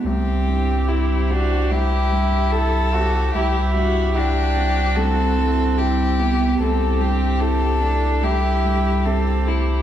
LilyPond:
<<
  \new Staff \with { instrumentName = "Viola" } { \time 4/4 \key c \lydian \tempo 4 = 73 g'2. a'8 g'8~ | g'4 fis'2 e'4 | g'2 g'4 g'4 | }
  \new Staff \with { instrumentName = "Violin" } { \time 4/4 \key c \lydian g'4 e'8 fis'8 g'4 a'4 | g'8 fis'8 g'4 a'4 g'4 | a'8 g'8 a'4 g'4 a'8 e'8 | }
  \new Staff \with { instrumentName = "Analog synth pad" } { \time 4/4 \key c \lydian <g e' c''>1 | <g e' e''>1 | <e' g' a'>1 | }
  \new Staff \with { instrumentName = "Cello" } { \time 4/4 \key c \lydian c'4. d'8 e'4. fis'8 | e'4 d'4 c'4. b8 | c'4. d'8 e'4 c'4 | }
  \new Staff \with { instrumentName = "Felt piano" } { \time 4/4 \key c \lydian c,8 g,8 <e' g'>8 c'8 c,8 g,8 <e' g'>8 c'8 | c,8 g,8 <e' g'>8 c'8 c,8 g,8 <e' g'>8 c8 | c,8 g,8 <e' g'>8 a8 c,8 g,8 <e' g'>8 a8 | }
  \new Staff \with { instrumentName = "Sub bass" } { \clef bass \time 4/4 \key c \lydian c,1 | c,1 | c,1 | }
>>